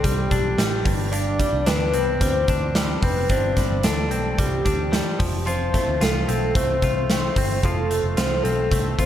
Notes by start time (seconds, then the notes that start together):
Already playing: C3 C4 D4
0.04 C2 G3 G4, kick, closed hi-hat
0.31 B1 D4, kick, closed hi-hat
0.58 A1 G3, snare, closed hi-hat
0.85 G1 G2, kick, open hi-hat
1.11 G2 D4 D5, closed hi-hat
1.39 G3, kick, closed hi-hat
1.53 C2
1.66 D2 D4 B4, snare, closed hi-hat
1.94 C2 C4, closed hi-hat
2.20 D2 G3 C5, kick, closed hi-hat
2.48 D2 D4, kick, closed hi-hat
2.62 C5
2.75 G3, snare, closed hi-hat
3.02 F1 C4 B4, kick, open hi-hat
3.29 G1 G2 D4 C5, kick, closed hi-hat
3.57 G3, kick, snare, closed hi-hat
3.70 G1
3.83 D2 D4 A4, snare, closed hi-hat
4.11 B1 C4, closed hi-hat
4.38 C2 G3 G4, kick, closed hi-hat
4.65 D2 D4, kick, closed hi-hat
4.92 G3, snare, closed hi-hat
5.19 F1 F3, kick, open hi-hat
5.46 F3 F4 C5, closed hi-hat
5.74 A3, kick, snare, closed hi-hat
5.88 D2
6.01 C2 F4 A4, snare, closed hi-hat
6.28 B1 C4, closed hi-hat
6.55 C2 A3 C5, kick, closed hi-hat
6.82 C2 F4, kick, closed hi-hat
6.96 C5
7.10 A3, snare, closed hi-hat
7.36 G1 C4, kick, open hi-hat
7.63 F1 F3 F4 A4, kick, closed hi-hat
7.91 A3, closed hi-hat
8.04 F1
8.17 C2 F4 C5, snare, closed hi-hat
8.43 B1 C4 A4, closed hi-hat
8.71 C2 A3 A4, kick, closed hi-hat
8.99 D2 F4 C5, kick, closed hi-hat